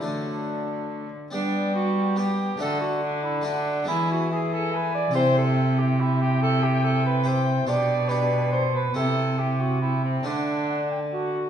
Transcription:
<<
  \new Staff \with { instrumentName = "Cornet" } { \time 3/4 \key d \mixolydian \tempo 4 = 141 d'2~ d'8 r8 | g''2 g''4 | fis''2 fis''4 | gis''4 gis''4 gis''4 |
g''2 g''4~ | g''2 g''4 | g''4 g''4. r8 | g''4 g''4 g''4 |
fis''4 fis''8 g''8 fis'4 | }
  \new Staff \with { instrumentName = "Cor anglais" } { \time 3/4 \key d \mixolydian a2~ a8 r8 | d'4 fis'4 g'4 | a'8 fis'8 d'8 e'8 d'4 | e'8 fis'8 gis'8 a'8 b'8 d''8 |
c''8 a'4 g'8 e'8 g'8 | a'8 g'8 a'8 b'8 c''4 | d''4 b'4 c''8 b'8 | a'4 g'8 fis'8 e'8 c'8 |
d'2 fis'4 | }
  \new Staff \with { instrumentName = "Bassoon" } { \time 3/4 \key d \mixolydian fis2~ fis8 r8 | b2 b4 | d'2 d'4 | e'4 e'4 e'4 |
e'2 e'4~ | e'2 e'4 | d'4 d'4. r8 | e'4 e'4 e'4 |
d'2~ d'8 r8 | }
  \new Staff \with { instrumentName = "Harpsichord" } { \time 3/4 \key d \mixolydian <a d'>2. | <b d'>2 <b d'>4 | <a d' fis'>2 <a d' fis'>4 | <gis b e'>2. |
<e' g'>2.~ | <e' g'>2 <e' g'>4 | <d' g'>4 <d' g'>2 | <c' e'>2. |
<a d'>2. | }
  \new Staff \with { instrumentName = "Harpsichord" } { \clef bass \time 3/4 \key d \mixolydian d2~ d8 r8 | g2. | d2. | e2. |
c2.~ | c2. | b,2. | c2. |
d2~ d8 r8 | }
  \new Staff \with { instrumentName = "Cello" } { \clef bass \time 3/4 \key d \mixolydian d2~ d8 r8 | g2. | d2. | e2. |
c2.~ | c2. | b,2. | c2. |
d2~ d8 r8 | }
>>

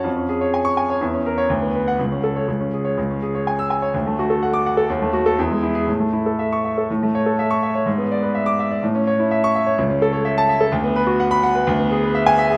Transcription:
\new Staff \with { instrumentName = "Grand piano" } { \time 2/4 \key cis \phrygian \tempo 4 = 125 << { r4 r16 cis'''8 r16 | r8. cis''16 r8. fis''16 | r8. cis''16 r8. cis''16 | \key a \major r4 r16 e'''8 r16 |
r4 r16 d'''8 r16 | r8. a'16 r8. gis'16 | r4 r16 cis'''8 r16 | r4 r16 cis'''8 r16 |
r4 r16 d'''8 r16 | r4 r16 cis'''8 r16 | r4 r16 a''8 r16 | r4 r16 b''8 r16 |
r4 r16 gis''8 r16 | } \\ { eis,16 cis'16 gis'16 cis''16 gis''8 gis''16 cis''16 | e,16 cis'16 ais'8 d,16 b16 b'8 | cis,16 cis'16 a'8 cis,16 cis'16 gis'8 | cis,16 cis'16 gis'16 cis''16 gis''8 gis''16 cis''16 |
d,16 a16 fis'16 a'16 fis''8 fis''16 a'16 | dis,16 a16 fis'8 e,16 gis16 e'8 | a,16 a16 e'16 a'16 e''8 e''16 a'16 | a,16 a16 cis''16 a'16 e''8 e''16 cis''16 |
gis,16 b16 d''16 b'16 e''8 e''16 d''16 | a,16 cis'16 cis''16 e'16 e''8 e''16 cis''16 | cis,16 cis'16 a'16 cis''16 e''8 e''16 a'16 | d,16 b16 b'16 fis'16 fis''8 fis''16 b'16 |
d,16 b16 gis'16 b'16 e''8 e''16 gis'16 | } >> }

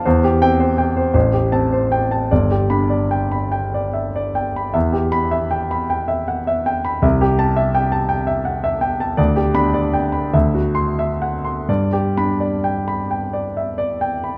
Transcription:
<<
  \new Staff \with { instrumentName = "Grand piano" } { \time 6/8 \key g \mixolydian \tempo 4. = 51 << { r8 g''8 r4 a''8 r8 | r8 b''8 r2 | \key g \major r8 b''8 r2 | r8 a''8 r2 |
r8 b''8 r4 c'''8 r8 | r8 b''8 r2 | } \\ { c''16 g'8 c''16 g''16 c''16 c''16 g'8 c''16 g''16 a''16 | d''16 g'8 d''16 g''16 b''16 g''16 d''16 e''16 d''16 g''16 b''16 | e''16 g'8 e''16 g''16 b''16 g''16 e''16 fis''16 e''16 g''16 b''16 | e''16 g'8 e''16 g''16 a''16 g''16 e''16 fis''16 e''16 g''16 a''16 |
d''16 g'8 d''16 g''16 b''16 e''16 fis'8 e''16 fis''16 c'''16 | d''16 g'8 d''16 g''16 b''16 g''16 d''16 e''16 d''16 g''16 b''16 | } >> }
  \new Staff \with { instrumentName = "Grand piano" } { \clef bass \time 6/8 \key g \mixolydian e,8 c'4 a,,8 c'4 | g,,8 d'4 r4. | \key g \major e,2. | c,2. |
d,8 d'4 d,4. | g,8 d'4 r4. | }
>>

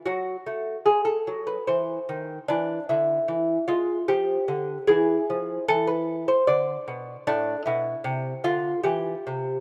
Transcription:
<<
  \new Staff \with { instrumentName = "Lute" } { \time 3/4 \key a \minor \tempo 4 = 75 << { fis'4 gis'16 a'8 b'16 bis'4 | d'8 e'4 f'8 g'4 | gis'4 a'16 b'8 c''16 d''4 | d'8 e'4 f'8 g'4 | } \\ { r2. | r2. | e'2 r4 | r2. | } >> }
  \new Staff \with { instrumentName = "Lute" } { \clef bass \time 3/4 \key a \minor fis8 a8 gis8 fis8 e8 dis8 | e8 d8 e8 gis8 f8 d8 | e8 f8 e4 d8 b,8 | a,8 b,8 c8 d8 e8 c8 | }
>>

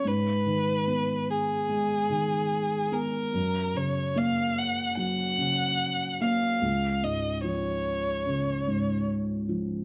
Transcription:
<<
  \new Staff \with { instrumentName = "Violin" } { \time 4/4 \key fis \major \tempo 4 = 73 b'4. gis'2 ais'8~ | ais'8 cis''8 eis''8 fis''8 fis''4. eis''8~ | eis''8 dis''8 cis''2 r4 | }
  \new Staff \with { instrumentName = "Felt piano" } { \clef bass \time 4/4 \key fis \major gis,8 dis8 b4 gis8 dis4 b8 | fis,8 cis8 ais4 fis8 cis4 ais8 | cis,8 gis,8 eis4 cis8 gis,4 eis8 | }
>>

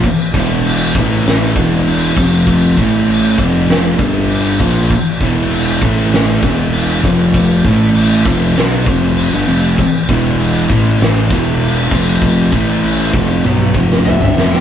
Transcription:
<<
  \new Staff \with { instrumentName = "Lead electric guitar" } { \time 4/4 \key a \mixolydian \tempo 4 = 98 r1 | r1 | r1 | r1 |
r1 | r2. e''8. g''16 | }
  \new Staff \with { instrumentName = "Distorted electric guitar" } { \clef bass \time 4/4 \key a \mixolydian r8 <e, b, e>4 <a, e a>4 <e, b, e>4 <f, c f>8~ | <f, c f>8 <a, e a>4 <f, c f>4 <g, d g>4 <ais, f ais>8 | r8 <e, b, e>4 <a, e a>4 <e, b, e>4 <f, c f>8~ | <f, c f>8 <a, e a>4 <f, c f>8 <b, fis b>8 <f, c f>8. <g, d>16 <f, c f>8 |
r8 <e, b, e>4 <a, e a>4 <e, b, e>4 <f, c f>8~ | <f, c f>8 <a, e a>4 <f, c f>8 <b, fis b>8 <f, c f>8. <g, d>16 <f, c f>8 | }
  \new Staff \with { instrumentName = "Distorted electric guitar" } { \clef bass \time 4/4 \key a \mixolydian r8 <e, b, e>4 <a, e a>4 <e, b, e>4 <f, c f>8~ | <f, c f>8 <a, e a>4 <f, c f>4 <g, d g>4 <ais, f ais>8 | r8 <e, b, e>4 <a, e a>4 <e, b, e>4 <f, c f>8~ | <f, c f>8 <a, e a>4 <f, c f>8 <b, fis b>8 <f, c f>8. <g, d>16 <f, c f>8 |
r8 <e, b, e>4 <a, e a>4 <e, b, e>4 <f, c f>8~ | <f, c f>8 <a, e a>4 <f, c f>8 <b, fis b>8 <f, c f>8. <g, d>16 <f, c f>8 | }
  \new Staff \with { instrumentName = "Fingered electric bass" } { \clef bass \time 4/4 \key a \mixolydian r8 e,,4 a,,4 e,,4 f,,8~ | f,,8 a,,4 f,,4 g,,4 ais,,8 | r8 e,,4 a,,4 e,,4 f,,8~ | f,,8 a,,4 f,,8 b,,8 f,,8. g,,16 f,,8 |
r8 e,,4 a,,4 e,,4 f,,8~ | f,,8 a,,4 f,,8 b,,8 f,,8. g,,16 f,,8 | }
  \new DrumStaff \with { instrumentName = "Drums" } \drummode { \time 4/4 <cymc bd>8 <cymc bd>8 cymc8 <cymc bd>8 <cymc sn>8 <cymc bd>8 cymc8 <cymc bd>8 | <cymc bd>8 <cymc bd>8 cymc8 <cymc bd>8 <cymc sn>8 <cymc bd>8 cymc8 <cymc bd>8 | <cymc bd>8 <cymc bd>8 cymc8 <cymc bd>8 <cymc sn>8 <cymc bd>8 cymc8 <cymc bd sn>8 | <cymc bd>8 <cymc bd>8 cymc8 <cymc bd>8 <cymc sn>8 <cymc bd>8 cymc8 cymc8 |
<cymc bd>8 <cymc bd>8 cymc8 <cymc bd>8 <cymc sn>8 <cymc bd>8 cymc8 <cymc bd>8 | <cymc bd>8 <cymc bd>8 cymc8 <cymc bd>8 tommh16 tommh16 bd16 sn16 toml16 toml16 sn16 sn16 | }
>>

